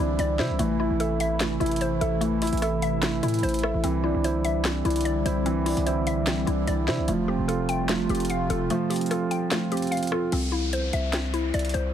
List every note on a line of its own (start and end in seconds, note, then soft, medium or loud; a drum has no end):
0.00 0.18 C2 loud
0.00 0.56 D3 medium
0.00 0.59 E3 medium
0.00 0.56 G3 medium
0.00 0.56 C4 medium
0.00 0.60 C4 medium
0.00 0.61 D4 medium
0.00 0.39 E4 medium
0.00 0.59 E4 medium
0.00 7.04 E4 medium
0.00 0.38 C5 medium
0.00 0.59 E5 loud
0.19 0.41 C2 loud
0.19 0.60 D5 loud
0.19 closed hi-hat medium
0.39 0.51 C3 loud
0.39 0.59 E4 medium
0.39 0.60 C5 medium
0.39 snare medium
0.50 0.59 C2 loud
0.59 0.89 A1 loud
0.59 3.81 C3 medium
0.59 1.39 E3 medium
0.59 3.81 E3 medium
0.59 1.40 A3 medium
0.59 3.81 A3 medium
0.59 closed hi-hat medium
0.80 1.59 E4 medium
0.90 1.58 A1 loud
1.00 2.00 A4 medium
1.00 2.00 E5 medium
1.00 closed hi-hat medium
1.20 2.42 E5 loud
1.20 closed hi-hat medium
1.40 2.20 E3 medium
1.40 2.20 A3 medium
1.40 snare loud
1.40 clap loud
1.40 closed hi-hat medium
1.60 2.00 A1 loud
1.60 2.41 E4 medium
1.60 2.40 E4 medium
1.60 closed hi-hat soft
1.66 closed hi-hat medium
1.71 closed hi-hat medium
1.76 closed hi-hat medium
1.81 3.03 C5 loud
1.81 closed hi-hat medium
2.01 2.51 A1 loud
2.01 2.61 A4 medium
2.01 2.61 E5 medium
2.01 closed hi-hat medium
2.21 3.01 E3 medium
2.21 3.02 A3 medium
2.21 closed hi-hat medium
2.42 3.22 E4 medium
2.42 closed hi-hat medium
2.42 open hi-hat medium
2.47 closed hi-hat medium
2.53 3.20 A1 loud
2.53 closed hi-hat medium
2.57 closed hi-hat soft
2.62 3.62 A4 medium
2.62 3.62 E5 medium
2.62 cross-stick medium
2.62 closed hi-hat medium
2.82 3.84 E5 loud
2.82 closed hi-hat medium
3.03 3.82 E3 medium
3.03 3.84 A3 medium
3.03 snare loud
3.03 clap medium
3.03 closed hi-hat medium
3.23 3.42 A2 loud
3.23 3.84 E4 medium
3.23 closed hi-hat medium
3.28 closed hi-hat medium
3.34 closed hi-hat medium
3.39 closed hi-hat soft
3.43 3.73 A1 loud
3.43 3.84 C5 loud
3.43 closed hi-hat medium
3.49 closed hi-hat medium
3.54 closed hi-hat medium
3.59 closed hi-hat medium
3.63 3.84 A4 medium
3.63 3.84 E5 medium
3.63 cross-stick loud
3.74 3.83 A1 loud
3.84 4.13 C2 loud
3.84 7.05 D3 medium
3.84 4.63 E3 medium
3.84 10.28 G3 medium
3.84 4.64 C4 medium
3.84 7.05 C4 medium
3.84 closed hi-hat medium
4.04 4.84 D4 medium
4.04 4.84 E4 medium
4.15 4.82 C2 loud
4.24 5.24 E4 medium
4.24 5.24 C5 medium
4.24 closed hi-hat medium
4.45 5.66 E5 loud
4.45 closed hi-hat medium
4.65 5.44 E3 medium
4.65 5.45 C4 medium
4.65 snare loud
4.65 clap loud
4.65 closed hi-hat medium
4.85 5.24 C2 loud
4.85 5.65 D4 medium
4.85 5.65 E4 medium
4.85 closed hi-hat soft
4.90 closed hi-hat medium
4.96 closed hi-hat medium
5.01 closed hi-hat medium
5.05 6.27 D5 loud
5.05 closed hi-hat medium
5.25 5.75 C2 loud
5.25 5.85 E4 medium
5.25 5.85 C5 medium
5.25 closed hi-hat medium
5.46 6.25 E3 medium
5.46 6.26 C4 medium
5.46 closed hi-hat medium
5.66 6.46 D4 medium
5.66 6.45 E4 medium
5.66 closed hi-hat medium
5.66 open hi-hat medium
5.77 6.44 C2 loud
5.77 closed hi-hat medium
5.86 6.86 E4 medium
5.86 6.86 C5 medium
5.86 closed hi-hat medium
6.07 7.08 E5 loud
6.07 closed hi-hat medium
6.27 7.08 E3 medium
6.27 7.08 C4 medium
6.27 snare loud
6.27 clap loud
6.27 closed hi-hat medium
6.47 6.67 C2 loud
6.47 7.08 D4 medium
6.47 7.08 E4 medium
6.47 closed hi-hat medium
6.67 6.89 C2 loud
6.67 7.08 D5 medium
6.67 closed hi-hat medium
6.88 7.00 C3 loud
6.88 7.08 E4 medium
6.88 7.08 C5 medium
6.88 snare medium
6.99 7.08 C2 loud
7.08 7.38 F1 loud
7.08 10.29 C3 medium
7.08 7.88 F3 medium
7.08 7.88 A3 medium
7.08 10.29 A3 medium
7.08 10.29 F4 medium
7.08 closed hi-hat medium
7.28 8.08 C4 medium
7.28 8.09 G4 medium
7.39 8.07 F1 loud
7.48 8.48 F4 medium
7.48 8.49 A4 medium
7.48 closed hi-hat medium
7.69 8.90 G5 loud
7.69 closed hi-hat medium
7.89 8.69 F3 medium
7.89 8.69 A3 medium
7.89 snare loud
7.89 clap loud
7.89 closed hi-hat medium
8.09 8.48 F1 loud
8.09 8.89 C4 medium
8.09 8.89 G4 medium
8.09 closed hi-hat soft
8.15 closed hi-hat medium
8.20 closed hi-hat medium
8.25 closed hi-hat medium
8.30 9.52 F5 loud
8.30 closed hi-hat medium
8.50 8.69 F1 loud
8.50 9.09 F4 medium
8.50 9.10 A4 medium
8.50 closed hi-hat medium
8.70 9.50 F3 loud
8.70 9.50 A3 loud
8.70 closed hi-hat medium
8.90 9.70 C4 medium
8.90 9.71 G4 medium
8.90 closed hi-hat medium
8.90 open hi-hat medium
8.96 closed hi-hat medium
9.01 closed hi-hat medium
9.06 closed hi-hat medium
9.11 10.10 F4 medium
9.11 10.11 A4 medium
9.11 cross-stick medium
9.11 closed hi-hat medium
9.31 10.32 G5 loud
9.31 closed hi-hat medium
9.51 10.32 F3 medium
9.51 10.33 A3 medium
9.51 snare loud
9.51 clap loud
9.51 closed hi-hat medium
9.71 10.32 C4 medium
9.71 10.33 G4 medium
9.71 closed hi-hat medium
9.77 closed hi-hat medium
9.82 closed hi-hat medium
9.87 closed hi-hat soft
9.91 10.32 F5 loud
9.91 closed hi-hat medium
9.97 closed hi-hat medium
10.03 closed hi-hat medium
10.07 closed hi-hat medium
10.12 10.32 F4 medium
10.12 10.32 A4 medium
10.12 cross-stick medium
10.32 10.91 C2 loud
10.32 11.12 C4 medium
10.32 closed hi-hat medium
10.32 crash medium
10.32 downlifter medium
10.52 11.32 E4 medium
10.73 11.73 C5 medium
10.73 closed hi-hat medium
10.93 11.52 C2 loud
10.93 11.94 E5 loud
10.93 closed hi-hat medium
11.13 11.93 C4 medium
11.13 snare loud
11.13 clap medium
11.13 closed hi-hat medium
11.34 11.94 E4 medium
11.34 closed hi-hat medium
11.54 11.73 C2 loud
11.54 11.94 D5 loud
11.54 closed hi-hat medium
11.59 closed hi-hat medium
11.65 closed hi-hat medium
11.69 closed hi-hat medium
11.74 11.94 C2 loud
11.74 11.94 C5 medium
11.74 closed hi-hat medium